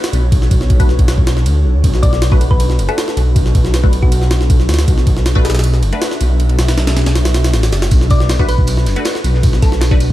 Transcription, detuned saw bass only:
0.13 B1
0.51 B1
0.99 B1
1.46 D2
1.65 B1
1.74 D2
1.84 B1
2.79 F#1
3.17 B1
3.55 B1
4.03 B1
4.69 D2
4.88 B1
5.83 F#1
6.21 B1
6.59 B1
7.06 B1
7.54 A1
7.73 F#1
7.91 B1
8.86 F#1
9.24 B1
9.63 B1

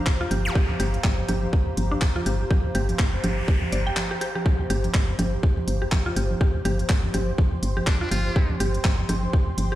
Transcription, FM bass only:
0.31 G1
0.80 G1
1.04 G1
1.29 G1
1.77 G1
2.26 G1
2.75 G1
2.99 G1
3.24 G1
3.72 G1
4.70 G1
4.94 G1
5.19 G1
5.68 G1
6.16 G1
6.65 G1
6.90 G1
7.14 G1
7.63 G1
8.11 G1
8.60 G1
8.85 G1
9.09 G1
9.58 G1

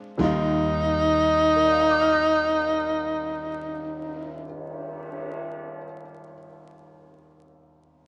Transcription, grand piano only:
Already playing: G#3 C4 D4 F4
0.18 D#2 D#3 G3 D#4 F4
1.56 A#4
1.64 D5
1.72 F5
1.80 A#5
1.90 D6
2.01 F6
2.13 A#6

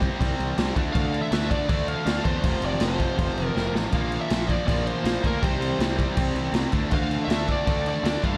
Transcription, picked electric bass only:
0.21 C2
0.40 C2
0.58 C2
0.76 D2
0.95 D2
1.32 D2
1.69 D2
2.06 D2
2.26 E2
2.44 F1
2.62 F1
2.81 F1
3.18 F1
3.36 F1
3.56 F1
3.74 A1
3.93 A#1
4.31 A#1
4.68 A#1
5.04 A#1
5.24 D2
5.43 C2
5.59 C2
5.79 C2
6.17 C2
6.35 C2
6.52 C2
6.73 D2
6.92 D2
7.28 D2
7.67 D2
8.03 D2
8.24 G2

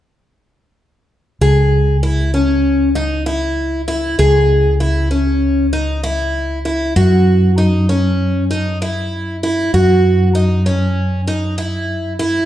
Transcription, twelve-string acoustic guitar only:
1.41 G#4
2.03 E4
2.34 C#4
2.95 D#4
3.26 E4
3.88 E4
4.19 G#4
4.80 E4
5.11 C#4
5.73 D#4
6.04 E4
6.65 E4
6.96 F#4
7.58 D#4
7.89 C#4
8.51 D#4
8.82 E4
9.43 E4
9.74 F#4
10.35 D#4
10.66 C#4
11.28 D#4
11.58 E4
12.19 E4

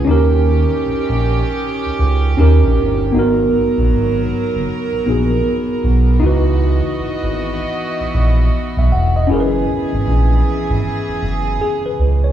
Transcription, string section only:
0.06 D#3 C#4 G4
2.37 D#3
3.13 F#3 B3 A#4
6.22 E3 F#4 D#5
9.29 E3 G#4

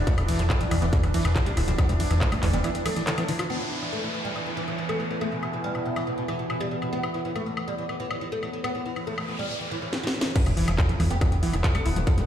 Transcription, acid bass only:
0.07 E3
0.28 E3
0.39 F3
0.50 E3
0.61 E3
0.71 E3
0.82 B3
0.93 E3
1.14 E3
1.25 D3
1.36 E3
1.46 G3
1.57 E4
1.68 F3
1.78 E3
1.89 G3
2.00 E3
2.11 E3
2.21 E3
2.32 G3
2.43 E3
2.53 B3
2.64 E3
2.86 E3
2.96 E3
3.07 D3
3.18 E3
3.28 D3
3.39 F4
10.36 E3
10.57 E3
10.68 F3
10.78 E3
10.89 E3
11.00 E3
11.11 B3
11.21 E3
11.43 E3
11.53 D3
11.64 E3
11.75 G3
11.86 E4
11.96 F3
12.07 E3
12.18 G3

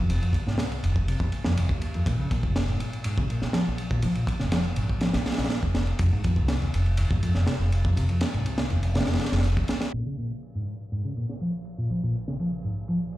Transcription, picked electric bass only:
0.10 C3
0.22 F2
0.47 G#2
0.58 C3
0.83 D#2
1.08 C3
1.46 F2
1.58 D#2
1.95 F2
2.07 A#2
2.19 C#3
2.31 A#2
2.69 G#2
3.05 G#2
3.18 C#3
3.30 A#2
3.54 F3
3.91 A#2
4.03 F3
4.16 A#2
4.40 C#3
4.52 F3
4.76 G#2
5.01 F3
6.00 F2
6.13 G#2
6.25 F2
6.62 D#2
6.98 D#2
7.11 G#2
7.23 F2
7.47 C3
7.85 F2
7.96 C3
8.09 F2
8.34 G#2
8.46 C3
8.70 D#2
8.95 C3
9.93 A#2
10.06 C#3
10.18 A#2
10.55 G#2
10.92 G#2
11.05 C#3
11.17 A#2
11.41 F3
11.78 A#2
11.91 F3
12.03 A#2
12.28 C#3
12.40 F3
12.64 G#2
12.89 F3

